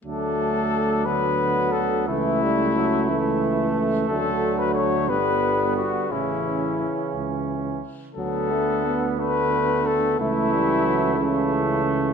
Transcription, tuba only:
X:1
M:6/8
L:1/8
Q:3/8=59
K:D
V:1 name="Tuba" clef=bass
D,,6 | C,,6 | D,,3 G,,,3 | A,,,2 z C,,2 z |
D,,6 | C,,6 |]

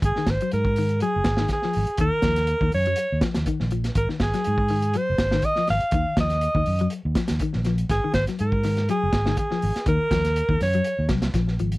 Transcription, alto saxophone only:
X:1
M:4/4
L:1/8
Q:"Swing 16ths" 1/4=122
K:Abmix
V:1 name="Alto saxophone"
A c B2 A2 A2 | B3 d2 z3 | B A3 c2 e f- | f e3 z4 |
A c B2 A2 A2 | B3 d2 z3 |]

